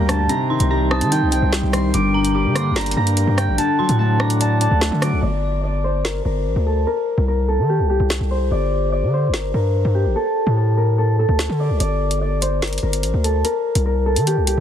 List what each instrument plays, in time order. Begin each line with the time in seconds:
Already playing: grand piano G2 D3 G3 A#3 D4, pipe organ D4 A#4 G5, harp A#5 C6 D6
0.00 808-style bass D2
0.09 grand piano D3, harp A5, cross-stick, closed hi-hat
0.29 grand piano C3, pipe organ D#4 C5, harp A#5, closed hi-hat
0.50 grand piano D#3, synth bell C6
0.60 808-style bass C2, closed hi-hat
0.70 grand piano G3, harp A#5
0.91 grand piano C4, harp A5, synth bell D#6, cross-stick
1.01 808-style bass D#3, closed hi-hat
1.12 grand piano D#4, harp G5, closed hi-hat
1.22 808-style bass C2
1.32 grand piano C4, harp G5, closed hi-hat
1.42 808-style bass C2
1.53 grand piano G3, snare
1.63 808-style bass C2
1.73 grand piano D#3, harp C6, cross-stick, closed hi-hat
1.94 808-style bass G1, grand piano G2, pipe organ D4 A#4, harp D6, closed hi-hat
2.14 grand piano D3, synth bell A#5
2.25 closed hi-hat
2.34 grand piano G3, harp D6
2.45 808-style bass D3
2.55 grand piano A#3, harp C6, synth bell D6, cross-stick, closed hi-hat
2.71 808-style bass G1
2.76 grand piano D4, harp A#5, snare, closed hi-hat
2.81 closed hi-hat
2.86 closed hi-hat
2.91 closed hi-hat
2.97 808-style bass G2, grand piano A#3, harp A#5
3.07 closed hi-hat
3.17 grand piano G3, closed hi-hat
3.27 808-style bass G2
3.37 grand piano D3, harp G5, cross-stick, closed hi-hat
3.48 808-style bass A1
3.58 grand piano D3, pipe organ A4 F#5, harp A5, closed hi-hat
3.79 grand piano F#3, synth bell C6
3.89 808-style bass A2, closed hi-hat
3.99 grand piano A3, harp A5
4.20 grand piano D4, harp A#5, synth bell D6, cross-stick
4.30 closed hi-hat
4.40 grand piano D5, harp A5, closed hi-hat
4.61 grand piano D4, harp A5, closed hi-hat
4.71 808-style bass D2
4.81 grand piano A3, snare
4.92 808-style bass D3
5.02 grand piano F#3, harp D6, cross-stick, closed hi-hat
5.12 808-style bass C2
5.22 808-style bass G1, harp D5
5.64 harp D5
5.84 harp C5
6.05 harp A#4, snare
6.25 808-style bass G1, harp A#4
6.46 808-style bass A1
6.56 808-style bass D2
6.66 harp A4
6.87 harp A#4
7.18 808-style bass C2
7.28 harp A#4
7.48 harp A4
7.59 808-style bass D#3
7.69 harp G4
7.79 808-style bass C2
7.90 harp G4
8.00 808-style bass C2
8.10 snare
8.21 808-style bass C2
8.31 harp C5
8.51 808-style bass G1, harp D5
8.92 harp D5
9.03 808-style bass D3
9.13 harp C5
9.28 808-style bass G1
9.33 harp A#4, snare
9.54 808-style bass G2, harp A#4
9.85 808-style bass G2
9.95 harp G4
10.06 808-style bass A1
10.16 harp A4
10.47 808-style bass A2
10.57 harp A4
10.77 harp A#4
10.98 harp A4
11.19 harp A4
11.29 808-style bass D2
11.39 snare
11.49 808-style bass D3
11.60 harp D5
11.70 808-style bass C2
11.80 808-style bass G1, harp D5, closed hi-hat
12.11 closed hi-hat
12.21 harp D5
12.42 harp C5, closed hi-hat
12.62 harp A#4, snare, closed hi-hat
12.67 closed hi-hat
12.73 closed hi-hat
12.78 closed hi-hat
12.83 808-style bass G1, harp A#4
12.93 closed hi-hat
13.03 808-style bass A1, closed hi-hat
13.14 808-style bass D2
13.24 harp A4, closed hi-hat
13.44 harp A#4, closed hi-hat
13.75 808-style bass C2, closed hi-hat
13.86 harp A#4
14.06 harp A4
14.16 808-style bass D#3, closed hi-hat
14.27 harp G4, closed hi-hat
14.37 808-style bass C2
14.47 harp G4, closed hi-hat